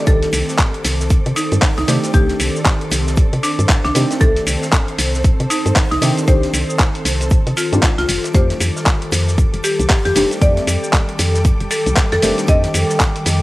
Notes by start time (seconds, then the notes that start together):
Already playing: D#3 A4 G5 D6
0.06 C2 D#3 A3 C4 D4 G4 A4, kick, closed hi-hat, shaker
0.23 snare, closed hi-hat
0.32 C2 C5, open hi-hat, shaker
0.49 snare, shaker
0.58 kick, snare, clap, closed hi-hat, shaker
0.74 closed hi-hat
0.84 C2 D5, open hi-hat, shaker
1.01 snare, shaker
1.10 kick, closed hi-hat, shaker
1.26 C3, closed hi-hat
1.36 D#4, open hi-hat, shaker
1.52 G2, closed hi-hat, shaker
1.62 kick, snare, clap, closed hi-hat, open hi-hat, shaker
1.73 A5
1.77 C2 D#4, snare, closed hi-hat
1.88 C3 D#3 A3 C4 D4 G4, open hi-hat, shaker
2.04 snare, closed hi-hat, shaker
2.13 C2 D#3 A3 C4 D4 G4, kick, closed hi-hat, shaker
2.29 snare, closed hi-hat
2.40 C2, open hi-hat, shaker
2.56 shaker
2.66 kick, snare, clap, closed hi-hat, shaker
2.81 closed hi-hat
2.91 C2, open hi-hat, shaker
3.07 snare, shaker
3.16 kick, closed hi-hat, shaker
3.18 shaker
3.33 C3, closed hi-hat
3.43 D4, open hi-hat, shaker
3.59 G2, closed hi-hat, shaker
3.69 kick, snare, clap, closed hi-hat, shaker
3.84 C2 D4, snare, closed hi-hat
3.94 C3 D#3 A3 C4 D4 G4, open hi-hat, shaker
4.11 snare, closed hi-hat, shaker
4.20 C2 D#3 A3 C4 D4 G4 A4 C5, kick, closed hi-hat, shaker
4.36 snare, closed hi-hat
4.47 C2, open hi-hat, shaker
4.62 snare, shaker
4.73 kick, snare, clap, closed hi-hat, shaker
4.88 closed hi-hat
4.98 C2, open hi-hat, shaker
5.14 snare, shaker
5.24 kick, closed hi-hat, shaker
5.40 C3, closed hi-hat
5.50 D#4, open hi-hat, shaker
5.65 G2, closed hi-hat, shaker
5.76 kick, snare, clap, closed hi-hat, open hi-hat, shaker
5.91 C2 D#4, snare, closed hi-hat
6.01 C3 D#3 A3 C4 D4 G4, open hi-hat, shaker
6.17 snare, closed hi-hat, shaker
6.27 C2 D#3 A3 C4 D4 G4 C5, kick, closed hi-hat, shaker
6.43 snare, closed hi-hat
6.53 C2, open hi-hat, shaker
6.70 shaker
6.79 kick, snare, clap, closed hi-hat, shaker
6.95 closed hi-hat
7.05 C2, open hi-hat, shaker
7.20 snare, closed hi-hat, shaker
7.30 kick, closed hi-hat, shaker
7.47 C3, closed hi-hat
7.57 F4, open hi-hat, shaker
7.72 G2 D#3 A3 C4 D4 G4, closed hi-hat, shaker
7.83 kick, snare, clap, closed hi-hat, shaker
7.98 C2 F4, snare, closed hi-hat
8.09 F1 D#3 G3 A4 D6, open hi-hat, shaker
8.24 snare, closed hi-hat, shaker
8.34 F2 D#3 A3 C4 D4 G4 C5, kick, closed hi-hat, shaker
8.50 A4, snare, closed hi-hat
8.60 F2, open hi-hat, shaker
8.73 D6, snare
8.77 shaker
8.86 kick, snare, clap, closed hi-hat, shaker
9.02 closed hi-hat
9.12 F2, open hi-hat, shaker
9.28 snare, shaker
9.38 kick, closed hi-hat, shaker
9.54 F1, closed hi-hat
9.64 G4, open hi-hat, shaker
9.79 C2, closed hi-hat, shaker
9.88 G5, kick, snare, clap, closed hi-hat, open hi-hat, shaker
10.05 F2 G4, snare, closed hi-hat
10.15 F1 D#3 A3 C4 D4 G4, open hi-hat, shaker
10.31 snare, closed hi-hat, shaker
10.40 F2 D#3 A3 C4 D4 G4 D5, kick, closed hi-hat, shaker
10.57 snare, closed hi-hat
10.67 F2, open hi-hat, shaker
10.84 shaker
10.93 kick, snare, clap, closed hi-hat, shaker
11.09 closed hi-hat
11.19 F2, open hi-hat, shaker
11.34 snare, shaker
11.45 kick, closed hi-hat, shaker
11.61 F1, closed hi-hat
11.71 A4, open hi-hat, shaker
11.86 C2, closed hi-hat, shaker
11.97 kick, snare, clap, closed hi-hat, shaker
12.12 F2 A4, snare, closed hi-hat
12.22 F1 D#3 A3 C4 D4 G4, open hi-hat, shaker
12.38 snare, closed hi-hat, shaker
12.47 F2 D3 D#3 A3 C4 G4 D#5, kick, closed hi-hat, shaker
12.63 snare, closed hi-hat
12.74 F2, open hi-hat, shaker
12.89 snare, shaker
13.00 kick, snare, clap, closed hi-hat, shaker
13.16 closed hi-hat
13.26 F2, open hi-hat, shaker